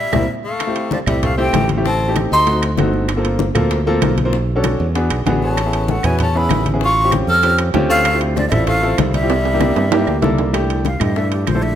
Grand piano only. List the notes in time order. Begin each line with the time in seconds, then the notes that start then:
0.13 A#3 C4 E4
0.67 A3 C4 E4 G4
1.07 A3 C4 E4 G4
1.38 A3 C4 E4 G4
1.77 A3 C4 E4 G4
2.08 A3 C4 D#4 G4
2.47 A3 C4 D#4 F#4
2.78 A3 C4 D#4 F#4
3.17 A#3 C4 F4 A4
3.55 A#3 C4 F4 A4
3.87 A#3 C4 F4 A4
4.25 A#3 C4 F4 C5
4.56 C#4 D4 F#4 A4
4.95 B3 D4 F#4 G#4
5.26 B3 D4 F#4 G#4
5.65 B3 C#4 E4 G#4
6.04 B3 C#4 E4 F#4
6.35 B3 C#4 E4 G#4
6.73 B3 C#4 E4 G#4
7.05 C4 C#4 F4 G4
7.43 C4 C#4 F4 G4
7.74 C4 C#4 F4 G4
8.13 C4 E4 F4 G4
8.51 C4 E4 F4 A4
8.82 C4 E4 F4 A4
9.22 C4 E4 F4 G4
9.53 A#3 D4 E4 G4
9.92 A#3 D4 E4 G4
10.22 A#3 D4 E4 A4
10.53 A3 D4 E4 G4
11.00 A3 D4 E4 G4
11.17 A3 D4 E4 A4
11.55 A3 D4 E4 A4